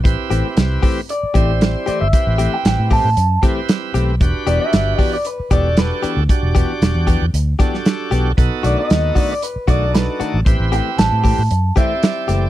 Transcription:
0.04 fingered electric bass A1, tonewheel organ C4 E4 G4 B4, kick, closed hi-hat
0.30 fingered electric bass A1, clean electric guitar E3 A3 C4 G4, closed hi-hat
0.57 fingered electric bass C2, snare, closed hi-hat
0.83 clean electric guitar E3 A3 C4 G4, kick, open hi-hat
1.09 clean electric guitar D5, closed hi-hat
1.23 muted fingered electric bass stroke
1.34 fingered electric bass A1, clean electric guitar E3 A3 C4 G4, tonewheel organ C4 E4 G4 C5, kick, closed hi-hat
1.61 snare, closed hi-hat
1.86 clean electric guitar E3 A3 C4 G4 D5, muted fingered electric bass stroke, closed hi-hat
2.01 fingered electric bass G1, clean electric guitar E5
2.13 tonewheel organ C4 E4 G4 B4, kick, closed hi-hat
2.27 fingered electric bass A1
2.38 clean electric guitar E3 A3 C4 G4, closed hi-hat
2.54 clean electric guitar G5
2.65 fingered electric bass A1, clean electric guitar G5, snare, closed hi-hat
2.79 fingered electric bass A2
2.91 clean electric guitar E3 A3 C4 G4 A5, kick, open hi-hat
3.04 fingered electric bass A2
3.17 fingered electric bass F#2, closed hi-hat
3.42 clean electric guitar E3 A3 C4 G4, tonewheel organ C4 E4 G4 B4, kick, closed hi-hat
3.69 snare, closed hi-hat
3.94 fingered electric bass B1, clean electric guitar E3 A3 C4 G4, closed hi-hat
4.20 fingered electric bass E1, tonewheel organ D4 F#4 G4 B4, kick, closed hi-hat
4.47 fingered electric bass E1, clean electric guitar E3 B3 D4 G4 D5, closed hi-hat
4.61 clean electric guitar E5
4.73 fingered electric bass G1, snare, closed hi-hat
4.98 clean electric guitar E3 B3 D4 G4 D5, kick, open hi-hat
5.13 clean electric guitar D5
5.25 clean electric guitar B4, closed hi-hat
5.40 muted fingered electric bass stroke
5.50 fingered electric bass E1, clean electric guitar E3 B3 D4 G4 D5, tonewheel organ D4 F#4 G4 A4, kick, closed hi-hat
5.77 clean electric guitar B4, snare, closed hi-hat
6.03 clean electric guitar E3 B3 D4 G4, muted fingered electric bass stroke, closed hi-hat
6.17 fingered electric bass D2
6.29 tonewheel organ D4 F#4 G4 D5, kick, closed hi-hat
6.43 fingered electric bass E1
6.55 clean electric guitar E3 B3 D4 G4, kick, closed hi-hat
6.82 fingered electric bass E1, snare, closed hi-hat
6.95 fingered electric bass E2
7.07 clean electric guitar E3 B3 D4 G4, kick, closed hi-hat
7.22 fingered electric bass E2
7.34 fingered electric bass D2, closed hi-hat
7.59 clean electric guitar E3 B3 D4 G4, tonewheel organ D4 F#4 G4 A4, kick, closed hi-hat
7.74 snare
7.86 snare, closed hi-hat
8.11 fingered electric bass B1, clean electric guitar E3 B3 D4 G4, closed hi-hat
8.37 fingered electric bass B1, tonewheel organ B3 D#4 F#4 A4, kick, closed hi-hat
8.63 fingered electric bass B1, clean electric guitar D#3 A3 D4 F#4 D5, closed hi-hat
8.79 clean electric guitar D#5
8.90 fingered electric bass D#2, snare, closed hi-hat
9.15 clean electric guitar D#3 A3 D4 F#4 D5, kick, open hi-hat
9.32 clean electric guitar D5
9.42 clean electric guitar B4, closed hi-hat
9.56 muted fingered electric bass stroke
9.67 fingered electric bass B1, clean electric guitar D#3 A3 D4 F#4 D5, tonewheel organ D4 D#4 F#4 A4, kick, closed hi-hat
9.94 clean electric guitar B4, snare, closed hi-hat
10.20 clean electric guitar D#3 A3 D4 F#4, muted fingered electric bass stroke, closed hi-hat
10.34 fingered electric bass A1
10.45 fingered electric bass A1, tonewheel organ C4 E4 G4 B4, kick, closed hi-hat
10.60 fingered electric bass A1
10.72 clean electric guitar E3 A3 C4 G4 G5, closed hi-hat
10.98 fingered electric bass A1, clean electric guitar A5, snare, closed hi-hat
11.12 fingered electric bass A2
11.24 clean electric guitar E3 A3 C4 G4, kick, open hi-hat
11.38 fingered electric bass A2
11.51 fingered electric bass F#2, closed hi-hat
11.76 clean electric guitar E3 A3 C4 G4 E5, tonewheel organ C4 E4 G4 D5, kick, closed hi-hat
12.03 snare, closed hi-hat
12.28 fingered electric bass F#1, clean electric guitar E3 A3 C4 G4, closed hi-hat

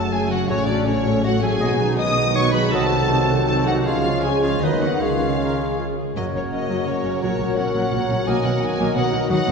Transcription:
Already playing: double bass section F#1, cello section F#2, harp F#2 C#3 C#4 F#4 C#5, trombone section C#3 A3, viola section C#4 F#4, french horn section C#4 F#4, clarinet A4, violin section A5, flute A5
0.11 viola section A3 A4, harp A3, clarinet G#4, violin section G#5, flute G#5
0.30 harp C#3, viola section C#4 F#4, clarinet F#4, flute F#5, violin section F#5
0.49 double bass section A1, cello section A2, harp A2, bassoon F#3, viola section A3 F#4, clarinet C#4, flute C#5, violin section C#5, oboe C#5
0.68 harp F#3, viola section C#4 A4, clarinet D4, violin section D5, flute D5
0.86 viola section A3 F#4, clarinet C#4, harp C#4, flute C#5, violin section C#5
1.05 viola section C#4 A4, harp F#4
1.24 harp A3, viola section A3 F#4, clarinet F#4, violin section F#5, flute F#5
1.42 harp F#3, viola section C#4 A4, clarinet G#4, violin section G#5, flute G#5
1.60 double bass section B1, cello section B2, harp B2, trombone section D#3 G#3, bassoon F#3, viola section B3 F#4, french horn section B3 F#4, oboe D#5
1.80 harp F#3, viola section D#4 G#4
1.98 viola section B3 F#4, harp D#4, clarinet D#5, violin section D#6, flute D#6
2.17 viola section D#4 G#4, harp F#4
2.35 harp G#3, viola section B3 F#4, clarinet C#5, flute C#6, violin section C#6
2.53 harp F#3, viola section D#4 G#4, clarinet B4, violin section B5, flute B5
2.72 double bass section C2, harp C3, cello section C3, bassoon F#3, trombone section F#3, french horn section C4, viola section C4 F#4, clarinet A4, oboe D#5, violin section A5, flute A5
2.92 harp A3, viola section D#4 A4
3.11 viola section C4 F#4, harp D#4
3.30 viola section D#4 A4, harp F#4
3.48 harp C4, viola section C4 F#4, clarinet A4, violin section A5, flute A5
3.67 harp A3, viola section D#4 A4, clarinet F#4, violin section F#5, flute F#5
3.85 double bass section C#2, harp C#3, cello section C#3, trombone section C#3 F3, bassoon G#3, french horn section C#4 G#4, clarinet F4, viola section F4 G#4, oboe C#5, flute F5, violin section F5
4.05 harp G#3, viola section C#4 F4
4.24 bassoon G#3, viola section F4 G#4, clarinet G#4, harp G#4, oboe C#5, flute G#5, violin section G#5
4.42 viola section C#4 F4, harp C#4, clarinet F4, flute F5, violin section F5
4.62 double bass section D#2, harp D#3, cello section D#3, trombone section D#3 F#3, bassoon F#3, french horn section B3 B4, viola section D#4 B4, clarinet D#4, oboe B4, violin section D#5, flute D#5
4.80 viola section B3 D#5, harp B3 B4, clarinet F#4, flute F#5, violin section F#5
5.00 double bass section C#2, cello section C#3, harp C#3, trombone section C#3 G#3, bassoon G#3, french horn section C#4 G#4, viola section F4 G#4, clarinet F4, oboe C#5, flute F5, violin section F5
5.20 harp G#3, viola section C#4 F4
5.40 harp G#4, viola section A#4
5.59 harp C#4, viola section G#4
5.78 harp G#3, viola section F4
5.97 harp C#4, viola section G#4
6.16 double bass section F#1, cello section F#2, harp F#2, trombone section C#3 A#3, viola section F#3, bassoon F#3, french horn section C#4 F#4, violin section F#4 A#4 D#5, clarinet A#4, oboe C#5, flute D#5
6.34 double bass section F#1, cello section F#2, viola section F#3 A#3, harp A#3, flute C#5, violin section C#5
6.52 double bass section F#1, cello section F#2, viola section F#3 C#4, harp F#4, flute D#5, violin section D#5
6.69 double bass section F#1, cello section F#2, viola section F#3, harp C#5
6.86 double bass section F#1, cello section F#2, viola section F#3 A#3, bassoon F#3, harp F#4, clarinet A#4, oboe C#5, flute C#5, violin section C#5
7.04 double bass section F#1, cello section F#2, viola section F#3 C#4, harp C#4
7.21 double bass section A#1, harp A#2, cello section A#2, viola section F#3, trombone section F#3, bassoon F#3, clarinet A#4, oboe C#5, flute C#5, violin section C#5
7.39 double bass section A#1, cello section A#2, viola section F#3 A#3, harp A#3
7.57 double bass section A#1, cello section A#2, bassoon F#3, viola section F#3 C#4, harp F#4, clarinet A#4, oboe C#5, flute F#5, violin section F#5
7.74 double bass section A#1, cello section A#2, viola section F#3, harp C#5
7.92 double bass section A#1, cello section A#2, viola section F#3 A#3, harp F#4
8.09 double bass section A#1, cello section A#2, viola section F#3 C#4, harp C#4
8.26 double bass section B1, cello section B2, harp B2, trombone section D#3, viola section F#3 A#3, bassoon F#3, french horn section A#3 F#4, violin section F#4 A#4 G#5, clarinet A#4, oboe D#5, flute G#5
8.43 double bass section B1, cello section B2, viola section F#3 B3, harp A#3, flute F#5, violin section F#5
8.60 double bass section B1, cello section B2, viola section F#3 D#4, harp F#4, flute G#5, violin section G#5
8.78 double bass section B1, cello section B2, viola section F#3 A#3, harp D#5
8.93 double bass section B1, cello section B2, viola section F#3 B3, bassoon F#3, harp F#4, clarinet A#4, flute F#5, violin section F#5
8.97 oboe D#5
9.12 double bass section B1, cello section B2, viola section F#3 D#4, harp D#4
9.28 double bass section D#2, cello section D#3, harp D#3, viola section F#3, bassoon F#3, trombone section F#3, french horn section B3, clarinet F#4, violin section B4 F#5, oboe D#5, flute F#5
9.46 double bass section D#2, cello section D#3, viola section F#3 B3, harp D#4

